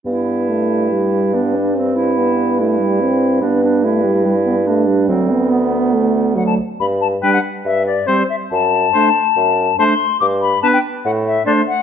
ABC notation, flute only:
X:1
M:4/4
L:1/16
Q:1/4=143
K:G
V:1 name="Flute"
z16 | z16 | z16 | z12 f a3 |
b2 a2 g f3 e2 d2 c2 e2 | a12 a c'3 | d'2 b2 a g3 f2 e2 d2 f2 |]